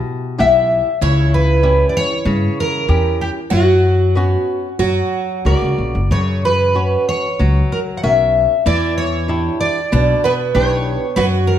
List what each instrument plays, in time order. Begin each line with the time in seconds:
Already playing: nylon-string guitar B2, twelve-string acoustic guitar G4
0.38 upright bass B1, nylon-string guitar E4 G4 F#5, twelve-string acoustic guitar E5
1.01 upright bass C#2, nylon-string guitar C#3, twelve-string acoustic guitar E4 C#5
1.34 twelve-string acoustic guitar B4
1.63 nylon-string guitar C#4 E4 G4
1.89 twelve-string acoustic guitar D5
1.97 twelve-string acoustic guitar C#5
2.25 upright bass G2, nylon-string guitar C#3
2.60 twelve-string acoustic guitar A#4
2.88 upright bass E2, nylon-string guitar C#4 E4 G4
3.21 twelve-string acoustic guitar G4
3.50 upright bass F#2, nylon-string guitar F#3, twelve-string acoustic guitar F#4
4.15 nylon-string guitar B3 C#4 F#4
4.79 upright bass F#2, nylon-string guitar F#3, twelve-string acoustic guitar F#4
5.45 upright bass C#2, nylon-string guitar C#3 F#4 A#4, twelve-string acoustic guitar D5
5.62 upright bass C#2
5.78 upright bass A#1
5.95 upright bass F#1
6.11 upright bass F#2, nylon-string guitar C#3, twelve-string acoustic guitar C#5
6.45 twelve-string acoustic guitar B4
6.75 nylon-string guitar C#4 F#4 C#5
7.09 twelve-string acoustic guitar C#5
7.39 upright bass C#2, nylon-string guitar F#3
7.72 twelve-string acoustic guitar A#4
7.97 twelve-string acoustic guitar F#5
8.03 upright bass B1, nylon-string guitar C#4 F#4 A#4, twelve-string acoustic guitar E5
8.66 upright bass E2, nylon-string guitar E3, twelve-string acoustic guitar E4 D5
8.98 twelve-string acoustic guitar C#5
9.28 nylon-string guitar D4 E4 G4
9.61 twelve-string acoustic guitar D5
9.92 upright bass B1, nylon-string guitar B2, twelve-string acoustic guitar D4
10.24 twelve-string acoustic guitar B3 B4
10.55 upright bass B1, nylon-string guitar D4 E4 G4, twelve-string acoustic guitar C#5
11.16 upright bass F#2, nylon-string guitar F#3, twelve-string acoustic guitar F#4 B4
11.47 twelve-string acoustic guitar A#4